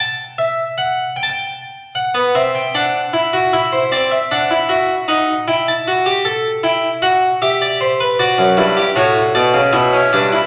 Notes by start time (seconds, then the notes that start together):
0.00 A5
0.38 E5
0.78 F#5
1.16 G5
1.23 A5
1.30 G5
1.95 F#5
2.15 B3
2.35 C4 E5
2.55 G5
2.75 D4 F#5
3.13 E4
3.33 F#4
3.53 E4 E5
3.72 C5
3.92 C4 D5
4.11 E5
4.31 D4 F#5
4.51 E4
4.69 F#4 E5
5.08 D#4 F#5
5.48 E4 G5
5.68 A5
5.87 F#4
6.06 G4
6.25 A4
6.63 E4 G5
7.02 F#4 F#5
7.42 G4 E5
7.62 D5
7.81 C5
8.00 B4
8.19 F#4 D5
8.38 F#2
8.57 G2 E4
8.77 G4
8.96 A2 F#4 C#5
9.35 B2 D5
9.54 C#3
9.73 B2 E4 E5
9.93 C#4
10.13 G2 D4
10.32 E4